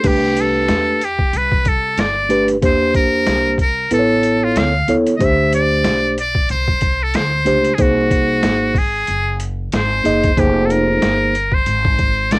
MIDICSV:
0, 0, Header, 1, 5, 480
1, 0, Start_track
1, 0, Tempo, 645161
1, 34, Time_signature, 4, 2, 24, 8
1, 9219, End_track
2, 0, Start_track
2, 0, Title_t, "Muted trumpet"
2, 0, Program_c, 0, 59
2, 56, Note_on_c, 0, 67, 89
2, 304, Note_on_c, 0, 69, 102
2, 315, Note_off_c, 0, 67, 0
2, 779, Note_on_c, 0, 67, 85
2, 790, Note_off_c, 0, 69, 0
2, 1021, Note_on_c, 0, 71, 94
2, 1032, Note_off_c, 0, 67, 0
2, 1253, Note_on_c, 0, 69, 94
2, 1264, Note_off_c, 0, 71, 0
2, 1491, Note_on_c, 0, 74, 96
2, 1502, Note_off_c, 0, 69, 0
2, 1849, Note_off_c, 0, 74, 0
2, 1975, Note_on_c, 0, 72, 96
2, 2189, Note_off_c, 0, 72, 0
2, 2204, Note_on_c, 0, 70, 102
2, 2650, Note_off_c, 0, 70, 0
2, 2692, Note_on_c, 0, 70, 95
2, 2907, Note_off_c, 0, 70, 0
2, 2928, Note_on_c, 0, 69, 92
2, 3306, Note_on_c, 0, 65, 90
2, 3317, Note_off_c, 0, 69, 0
2, 3408, Note_on_c, 0, 77, 97
2, 3419, Note_off_c, 0, 65, 0
2, 3686, Note_off_c, 0, 77, 0
2, 3844, Note_on_c, 0, 75, 70
2, 3902, Note_on_c, 0, 76, 101
2, 3913, Note_off_c, 0, 75, 0
2, 4125, Note_off_c, 0, 76, 0
2, 4129, Note_on_c, 0, 74, 111
2, 4572, Note_off_c, 0, 74, 0
2, 4614, Note_on_c, 0, 74, 101
2, 4828, Note_off_c, 0, 74, 0
2, 4845, Note_on_c, 0, 72, 100
2, 5231, Note_on_c, 0, 69, 91
2, 5243, Note_off_c, 0, 72, 0
2, 5326, Note_on_c, 0, 72, 91
2, 5338, Note_off_c, 0, 69, 0
2, 5763, Note_on_c, 0, 68, 67
2, 5774, Note_off_c, 0, 72, 0
2, 5814, Note_on_c, 0, 66, 95
2, 5825, Note_off_c, 0, 68, 0
2, 6533, Note_on_c, 0, 68, 100
2, 6545, Note_off_c, 0, 66, 0
2, 7049, Note_off_c, 0, 68, 0
2, 7254, Note_on_c, 0, 72, 96
2, 7734, Note_on_c, 0, 67, 91
2, 7746, Note_off_c, 0, 72, 0
2, 7930, Note_on_c, 0, 69, 67
2, 7941, Note_off_c, 0, 67, 0
2, 7971, Note_on_c, 0, 70, 99
2, 7982, Note_off_c, 0, 69, 0
2, 8587, Note_on_c, 0, 72, 98
2, 8598, Note_off_c, 0, 70, 0
2, 9166, Note_on_c, 0, 74, 91
2, 9178, Note_off_c, 0, 72, 0
2, 9219, Note_off_c, 0, 74, 0
2, 9219, End_track
3, 0, Start_track
3, 0, Title_t, "Tine electric piano"
3, 0, Program_c, 1, 4
3, 25, Note_on_c, 1, 57, 71
3, 30, Note_on_c, 1, 62, 67
3, 33, Note_on_c, 1, 67, 65
3, 37, Note_on_c, 1, 71, 83
3, 744, Note_off_c, 1, 57, 0
3, 747, Note_off_c, 1, 62, 0
3, 748, Note_off_c, 1, 67, 0
3, 750, Note_off_c, 1, 71, 0
3, 1705, Note_on_c, 1, 57, 74
3, 1710, Note_on_c, 1, 62, 64
3, 1712, Note_on_c, 1, 67, 68
3, 1718, Note_on_c, 1, 71, 77
3, 1898, Note_off_c, 1, 57, 0
3, 1900, Note_off_c, 1, 62, 0
3, 1901, Note_off_c, 1, 67, 0
3, 1904, Note_off_c, 1, 71, 0
3, 1947, Note_on_c, 1, 58, 73
3, 1954, Note_on_c, 1, 62, 68
3, 1956, Note_on_c, 1, 67, 70
3, 1961, Note_on_c, 1, 72, 86
3, 2665, Note_off_c, 1, 58, 0
3, 2669, Note_off_c, 1, 62, 0
3, 2670, Note_off_c, 1, 67, 0
3, 2672, Note_off_c, 1, 72, 0
3, 2910, Note_on_c, 1, 59, 75
3, 2913, Note_on_c, 1, 64, 67
3, 2916, Note_on_c, 1, 69, 65
3, 2921, Note_on_c, 1, 71, 65
3, 2969, Note_on_c, 1, 73, 79
3, 2974, Note_off_c, 1, 71, 0
3, 3503, Note_off_c, 1, 59, 0
3, 3504, Note_off_c, 1, 64, 0
3, 3506, Note_off_c, 1, 69, 0
3, 3532, Note_off_c, 1, 73, 0
3, 3630, Note_on_c, 1, 59, 71
3, 3636, Note_on_c, 1, 64, 66
3, 3638, Note_on_c, 1, 69, 68
3, 3642, Note_on_c, 1, 73, 77
3, 3820, Note_off_c, 1, 59, 0
3, 3823, Note_off_c, 1, 64, 0
3, 3824, Note_off_c, 1, 69, 0
3, 3826, Note_off_c, 1, 73, 0
3, 3862, Note_on_c, 1, 57, 76
3, 3867, Note_on_c, 1, 62, 65
3, 3872, Note_on_c, 1, 67, 67
3, 3876, Note_on_c, 1, 72, 84
3, 4583, Note_off_c, 1, 57, 0
3, 4585, Note_off_c, 1, 62, 0
3, 4588, Note_off_c, 1, 67, 0
3, 4590, Note_off_c, 1, 72, 0
3, 5546, Note_on_c, 1, 57, 70
3, 5549, Note_on_c, 1, 62, 66
3, 5555, Note_on_c, 1, 67, 68
3, 5557, Note_on_c, 1, 72, 78
3, 5738, Note_off_c, 1, 57, 0
3, 5740, Note_off_c, 1, 62, 0
3, 5743, Note_off_c, 1, 67, 0
3, 5744, Note_off_c, 1, 72, 0
3, 5790, Note_on_c, 1, 58, 74
3, 5791, Note_on_c, 1, 63, 70
3, 5796, Note_on_c, 1, 68, 67
3, 5799, Note_on_c, 1, 72, 82
3, 6507, Note_off_c, 1, 58, 0
3, 6507, Note_off_c, 1, 63, 0
3, 6510, Note_off_c, 1, 68, 0
3, 6511, Note_off_c, 1, 72, 0
3, 7469, Note_on_c, 1, 58, 70
3, 7475, Note_on_c, 1, 63, 68
3, 7480, Note_on_c, 1, 68, 65
3, 7484, Note_on_c, 1, 75, 83
3, 7660, Note_off_c, 1, 58, 0
3, 7663, Note_off_c, 1, 63, 0
3, 7665, Note_off_c, 1, 68, 0
3, 7667, Note_off_c, 1, 75, 0
3, 7713, Note_on_c, 1, 58, 76
3, 7718, Note_on_c, 1, 63, 66
3, 7723, Note_on_c, 1, 68, 67
3, 7727, Note_on_c, 1, 72, 85
3, 8428, Note_off_c, 1, 58, 0
3, 8431, Note_off_c, 1, 63, 0
3, 8433, Note_off_c, 1, 68, 0
3, 8435, Note_off_c, 1, 72, 0
3, 9219, End_track
4, 0, Start_track
4, 0, Title_t, "Upright bass"
4, 0, Program_c, 2, 32
4, 33, Note_on_c, 2, 36, 100
4, 489, Note_off_c, 2, 36, 0
4, 509, Note_on_c, 2, 40, 91
4, 967, Note_off_c, 2, 40, 0
4, 990, Note_on_c, 2, 36, 85
4, 1448, Note_off_c, 2, 36, 0
4, 1470, Note_on_c, 2, 31, 83
4, 1928, Note_off_c, 2, 31, 0
4, 1954, Note_on_c, 2, 40, 106
4, 2410, Note_off_c, 2, 40, 0
4, 2429, Note_on_c, 2, 36, 87
4, 2888, Note_off_c, 2, 36, 0
4, 2910, Note_on_c, 2, 33, 92
4, 3368, Note_off_c, 2, 33, 0
4, 3393, Note_on_c, 2, 38, 94
4, 3621, Note_off_c, 2, 38, 0
4, 3629, Note_on_c, 2, 39, 81
4, 3860, Note_off_c, 2, 39, 0
4, 3875, Note_on_c, 2, 38, 108
4, 4331, Note_off_c, 2, 38, 0
4, 4353, Note_on_c, 2, 35, 88
4, 4810, Note_off_c, 2, 35, 0
4, 4836, Note_on_c, 2, 36, 90
4, 5291, Note_off_c, 2, 36, 0
4, 5316, Note_on_c, 2, 38, 80
4, 5543, Note_off_c, 2, 38, 0
4, 5558, Note_on_c, 2, 37, 89
4, 5784, Note_off_c, 2, 37, 0
4, 5795, Note_on_c, 2, 36, 97
4, 6250, Note_off_c, 2, 36, 0
4, 6275, Note_on_c, 2, 32, 85
4, 6731, Note_off_c, 2, 32, 0
4, 6756, Note_on_c, 2, 30, 80
4, 7211, Note_off_c, 2, 30, 0
4, 7239, Note_on_c, 2, 32, 88
4, 7465, Note_off_c, 2, 32, 0
4, 7481, Note_on_c, 2, 30, 88
4, 7706, Note_off_c, 2, 30, 0
4, 7718, Note_on_c, 2, 29, 105
4, 8172, Note_off_c, 2, 29, 0
4, 8202, Note_on_c, 2, 31, 86
4, 8654, Note_off_c, 2, 31, 0
4, 8679, Note_on_c, 2, 32, 94
4, 9133, Note_off_c, 2, 32, 0
4, 9160, Note_on_c, 2, 34, 102
4, 9219, Note_off_c, 2, 34, 0
4, 9219, End_track
5, 0, Start_track
5, 0, Title_t, "Drums"
5, 28, Note_on_c, 9, 42, 85
5, 28, Note_on_c, 9, 49, 87
5, 31, Note_on_c, 9, 36, 99
5, 102, Note_off_c, 9, 42, 0
5, 102, Note_off_c, 9, 49, 0
5, 106, Note_off_c, 9, 36, 0
5, 272, Note_on_c, 9, 42, 70
5, 346, Note_off_c, 9, 42, 0
5, 508, Note_on_c, 9, 38, 113
5, 510, Note_on_c, 9, 42, 74
5, 583, Note_off_c, 9, 38, 0
5, 584, Note_off_c, 9, 42, 0
5, 754, Note_on_c, 9, 42, 63
5, 828, Note_off_c, 9, 42, 0
5, 883, Note_on_c, 9, 36, 76
5, 957, Note_off_c, 9, 36, 0
5, 992, Note_on_c, 9, 42, 74
5, 1066, Note_off_c, 9, 42, 0
5, 1129, Note_on_c, 9, 36, 84
5, 1203, Note_off_c, 9, 36, 0
5, 1228, Note_on_c, 9, 42, 65
5, 1233, Note_on_c, 9, 36, 88
5, 1302, Note_off_c, 9, 42, 0
5, 1307, Note_off_c, 9, 36, 0
5, 1470, Note_on_c, 9, 42, 78
5, 1479, Note_on_c, 9, 38, 101
5, 1544, Note_off_c, 9, 42, 0
5, 1554, Note_off_c, 9, 38, 0
5, 1711, Note_on_c, 9, 42, 72
5, 1786, Note_off_c, 9, 42, 0
5, 1846, Note_on_c, 9, 42, 47
5, 1921, Note_off_c, 9, 42, 0
5, 1952, Note_on_c, 9, 36, 103
5, 1952, Note_on_c, 9, 42, 86
5, 2027, Note_off_c, 9, 36, 0
5, 2027, Note_off_c, 9, 42, 0
5, 2190, Note_on_c, 9, 36, 88
5, 2191, Note_on_c, 9, 42, 75
5, 2265, Note_off_c, 9, 36, 0
5, 2266, Note_off_c, 9, 42, 0
5, 2430, Note_on_c, 9, 38, 110
5, 2431, Note_on_c, 9, 42, 77
5, 2504, Note_off_c, 9, 38, 0
5, 2505, Note_off_c, 9, 42, 0
5, 2664, Note_on_c, 9, 36, 76
5, 2671, Note_on_c, 9, 42, 68
5, 2739, Note_off_c, 9, 36, 0
5, 2746, Note_off_c, 9, 42, 0
5, 2907, Note_on_c, 9, 42, 76
5, 2982, Note_off_c, 9, 42, 0
5, 3149, Note_on_c, 9, 42, 61
5, 3223, Note_off_c, 9, 42, 0
5, 3390, Note_on_c, 9, 42, 87
5, 3400, Note_on_c, 9, 38, 104
5, 3465, Note_off_c, 9, 42, 0
5, 3474, Note_off_c, 9, 38, 0
5, 3630, Note_on_c, 9, 42, 74
5, 3705, Note_off_c, 9, 42, 0
5, 3768, Note_on_c, 9, 42, 47
5, 3843, Note_off_c, 9, 42, 0
5, 3872, Note_on_c, 9, 42, 84
5, 3873, Note_on_c, 9, 36, 105
5, 3947, Note_off_c, 9, 42, 0
5, 3948, Note_off_c, 9, 36, 0
5, 4111, Note_on_c, 9, 42, 74
5, 4186, Note_off_c, 9, 42, 0
5, 4348, Note_on_c, 9, 38, 107
5, 4349, Note_on_c, 9, 42, 84
5, 4422, Note_off_c, 9, 38, 0
5, 4423, Note_off_c, 9, 42, 0
5, 4596, Note_on_c, 9, 42, 67
5, 4670, Note_off_c, 9, 42, 0
5, 4724, Note_on_c, 9, 36, 76
5, 4798, Note_off_c, 9, 36, 0
5, 4829, Note_on_c, 9, 42, 75
5, 4903, Note_off_c, 9, 42, 0
5, 4968, Note_on_c, 9, 36, 84
5, 5043, Note_off_c, 9, 36, 0
5, 5066, Note_on_c, 9, 42, 61
5, 5073, Note_on_c, 9, 36, 90
5, 5140, Note_off_c, 9, 42, 0
5, 5147, Note_off_c, 9, 36, 0
5, 5311, Note_on_c, 9, 42, 84
5, 5320, Note_on_c, 9, 38, 103
5, 5385, Note_off_c, 9, 42, 0
5, 5394, Note_off_c, 9, 38, 0
5, 5550, Note_on_c, 9, 42, 74
5, 5625, Note_off_c, 9, 42, 0
5, 5688, Note_on_c, 9, 42, 44
5, 5762, Note_off_c, 9, 42, 0
5, 5790, Note_on_c, 9, 42, 89
5, 5793, Note_on_c, 9, 36, 105
5, 5864, Note_off_c, 9, 42, 0
5, 5867, Note_off_c, 9, 36, 0
5, 6032, Note_on_c, 9, 36, 91
5, 6034, Note_on_c, 9, 42, 70
5, 6106, Note_off_c, 9, 36, 0
5, 6109, Note_off_c, 9, 42, 0
5, 6271, Note_on_c, 9, 38, 112
5, 6273, Note_on_c, 9, 42, 82
5, 6346, Note_off_c, 9, 38, 0
5, 6347, Note_off_c, 9, 42, 0
5, 6507, Note_on_c, 9, 36, 83
5, 6516, Note_on_c, 9, 46, 48
5, 6582, Note_off_c, 9, 36, 0
5, 6590, Note_off_c, 9, 46, 0
5, 6751, Note_on_c, 9, 42, 72
5, 6825, Note_off_c, 9, 42, 0
5, 6993, Note_on_c, 9, 42, 66
5, 7067, Note_off_c, 9, 42, 0
5, 7234, Note_on_c, 9, 42, 77
5, 7243, Note_on_c, 9, 38, 103
5, 7309, Note_off_c, 9, 42, 0
5, 7318, Note_off_c, 9, 38, 0
5, 7478, Note_on_c, 9, 42, 75
5, 7552, Note_off_c, 9, 42, 0
5, 7615, Note_on_c, 9, 42, 44
5, 7619, Note_on_c, 9, 36, 94
5, 7689, Note_off_c, 9, 42, 0
5, 7694, Note_off_c, 9, 36, 0
5, 7718, Note_on_c, 9, 36, 112
5, 7720, Note_on_c, 9, 42, 88
5, 7792, Note_off_c, 9, 36, 0
5, 7794, Note_off_c, 9, 42, 0
5, 7963, Note_on_c, 9, 42, 73
5, 8037, Note_off_c, 9, 42, 0
5, 8200, Note_on_c, 9, 38, 109
5, 8201, Note_on_c, 9, 42, 80
5, 8274, Note_off_c, 9, 38, 0
5, 8276, Note_off_c, 9, 42, 0
5, 8444, Note_on_c, 9, 42, 68
5, 8519, Note_off_c, 9, 42, 0
5, 8569, Note_on_c, 9, 36, 75
5, 8643, Note_off_c, 9, 36, 0
5, 8676, Note_on_c, 9, 42, 79
5, 8750, Note_off_c, 9, 42, 0
5, 8814, Note_on_c, 9, 36, 91
5, 8888, Note_off_c, 9, 36, 0
5, 8916, Note_on_c, 9, 42, 62
5, 8919, Note_on_c, 9, 36, 88
5, 8991, Note_off_c, 9, 42, 0
5, 8993, Note_off_c, 9, 36, 0
5, 9159, Note_on_c, 9, 42, 82
5, 9168, Note_on_c, 9, 38, 96
5, 9219, Note_off_c, 9, 38, 0
5, 9219, Note_off_c, 9, 42, 0
5, 9219, End_track
0, 0, End_of_file